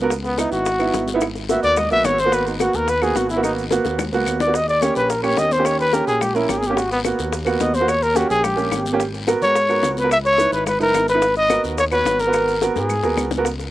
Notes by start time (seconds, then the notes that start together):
Already playing: C#2
0.02 B3 F#4 A#4
0.10 high bongo, high conga, long guiro, maracas
0.24 B3, high bongo, high conga, maracas
0.37 B3 D#4 E4, high bongo, high conga, short guiro, claves, maracas
0.52 G#1 F#4, high bongo, high conga, short guiro, maracas
0.66 high bongo, long guiro, maracas
0.79 B3 D#4 E4, claves, maracas
0.94 G#1, high bongo, low bongo, high conga, short guiro, maracas
1.07 high bongo, high conga, short guiro, maracas
1.14 B3 D#4 E4
1.21 high bongo, high conga, long guiro, claves, maracas
1.35 high bongo, high conga, maracas
1.49 A#3 B3 F#4 E5, high bongo, high conga, short guiro, maracas
1.63 D#2 D5, high bongo, high conga, short guiro, maracas
1.76 D#5, high bongo, high conga, low conga, long guiro, claves, maracas
1.91 A#1 A#3 B3 F#4 E5, high conga, low conga, maracas
2.04 G#1 C#5, high bongo, low bongo, high conga, short guiro, claves, maracas
2.18 C5, high bongo, high conga, short guiro, maracas
2.25 A#3 B3 F#4
2.32 B4, high bongo, long guiro, maracas
2.46 D#4, high bongo, maracas
2.59 A#3 B3 F#4, high bongo, high conga, short guiro, claves, maracas
2.73 D#2 A#4, high bongo, short guiro, maracas
2.87 B4, high bongo, high conga, long guiro, maracas
3.01 A#3 B3 F#4 G#4, claves, maracas
3.15 G#1 F#4, high bongo, low bongo, high conga, short guiro, maracas
3.29 E4, high bongo, high conga, short guiro, maracas
3.36 A#3 B3 F#4
3.43 D#4, high bongo, high conga, long guiro, claves, maracas
3.57 high conga, maracas
3.71 A#3 B3 F#4, high bongo, high conga, short guiro, maracas
3.85 D#2, high bongo, short guiro, maracas
3.99 low bongo, high conga, low conga, long guiro, claves, maracas
4.12 C#2 A#3 B3 F#4, maracas
4.26 D#2, high conga, short guiro, claves, maracas
4.40 D5, low bongo, high conga, short guiro, maracas
4.47 A#3 B3 F#4
4.54 D#5, high bongo, high conga, long guiro, maracas
4.68 D5, high bongo, high conga, maracas
4.81 A#3 C#4 G4 C#5, high bongo, high conga, short guiro, claves, maracas
4.95 A#1 B4, high bongo, high conga, short guiro, maracas
5.09 A#4, high bongo, high conga, long guiro, maracas
5.22 A#3 C#4 G4 C#5, high conga, claves, maracas
5.37 D#2 D#5, high bongo, low bongo, high conga, short guiro, maracas
5.51 C5, high bongo, high conga, short guiro, maracas
5.58 A#3 C#4 G4
5.65 C#5, high bongo, high conga, long guiro, claves, maracas
5.79 B4, high bongo, maracas
5.93 A#3 C#4 G4 A#4, high bongo, high conga, short guiro, maracas
6.07 A#1 G#4, high bongo, high conga, short guiro, maracas
6.21 G4, high bongo, high conga, low conga, long guiro, claves, maracas
6.34 A#3 C#4 E4 A#4, high conga, maracas
6.49 G#1 G4, high bongo, low bongo, high conga, short guiro, claves, maracas
6.58 G#4
6.63 high bongo, high conga, short guiro, maracas
6.67 A#3 C#4 G4
6.77 F#4, high bongo, high conga, long guiro, maracas
6.91 B3, high bongo, maracas
7.04 A#3 B3 F#4, high bongo, high conga, short guiro, claves, maracas
7.18 D#2, high bongo, high conga, short guiro, maracas
7.32 high bongo, high conga, long guiro, maracas
7.45 A#3 B3 F#4, high conga, claves, maracas
7.60 D#2 D#5, high bongo, low bongo, high conga, short guiro, maracas
7.74 C5, high bongo, high conga, short guiro, maracas
7.80 A#3 B3 F#4
7.88 C#5, high bongo, high conga, long guiro, claves, maracas
8.02 A#4, high bongo, high conga, maracas
8.14 A#3 C#4 F#4 G4, high bongo, high conga, short guiro, maracas
8.30 A#1 G#4, high bongo, short guiro, maracas
8.44 G4, high bongo, high conga, low conga, long guiro, claves, maracas
8.56 A#1 A#3 C#4 G4, high conga, low conga, maracas
8.71 G#1, high bongo, low bongo, high conga, short guiro, claves, maracas
8.85 high bongo, high conga, short guiro, maracas
8.92 A#3 C#4 G4
9.00 high bongo, long guiro, maracas
9.13 high bongo, high conga, maracas
9.27 B3 F#4 A#4, high bongo, high conga, short guiro, claves, maracas
9.41 G#2 C#5, high bongo, high conga, short guiro, maracas
9.55 high bongo, high conga, long guiro, maracas
9.69 B3 F#4 A#4, high conga, claves, maracas
9.82 C#2, high bongo, low bongo, high conga, short guiro, maracas
9.97 B4, high bongo, high conga, short guiro, maracas
10.03 B3 F#4 A#4
10.11 E5, high bongo, long guiro, claves, maracas
10.25 C#5, high bongo, high conga, maracas
10.38 D#4 E4 B4, high bongo, high conga, short guiro, maracas
10.52 G#1 B4, high bongo, high conga, short guiro, maracas
10.66 B4, high bongo, high conga, low conga, long guiro, claves, maracas
10.79 F#1 D#4 E4 A#4 B4, high conga, low conga, maracas
10.94 G#1, high bongo, low bongo, high conga, short guiro, claves, maracas
11.08 B4, high bongo, high conga, short guiro, maracas
11.14 D#4 E4 B4
11.22 high bongo, long guiro, maracas
11.36 D#5, high bongo, high conga, maracas
11.50 B3 F#4 A#4, high bongo, high conga, short guiro, claves, maracas
11.64 D#2, high bongo, high conga, short guiro, maracas
11.77 C#5, high bongo, high conga, long guiro, maracas
11.91 B3 F#4 B4 C#5, high conga, claves, maracas
12.05 G#1, high bongo, low bongo, high conga, short guiro, maracas
12.19 A#4, high bongo, high conga, short guiro, maracas
12.27 B3 F#4 B4
12.33 high bongo, long guiro, claves, maracas
12.48 high bongo, high conga, maracas
12.61 B3 F#4 A#4, high bongo, high conga, short guiro, maracas
12.75 G#2 G#4, high bongo, short guiro, maracas
12.89 high conga, low conga, long guiro, claves, maracas
13.03 D#2 B3 F#4 A#4, high bongo, high conga, maracas
13.17 C#2, low bongo, high conga, short guiro, claves, maracas
13.31 low bongo, high conga, short guiro, maracas
13.38 B3 F#4 A#4
13.45 high bongo, high conga, long guiro, maracas
13.59 high bongo, high conga, maracas